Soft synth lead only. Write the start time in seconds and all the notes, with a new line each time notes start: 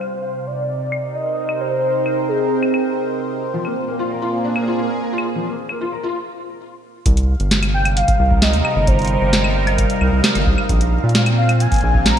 Already playing: C5
0.47 D5
1.15 D#5
1.60 C5
2.29 G#4
7.74 G5
7.97 F5
8.42 D#5
8.87 C5
11.38 F5
11.61 G#5
12.06 A#5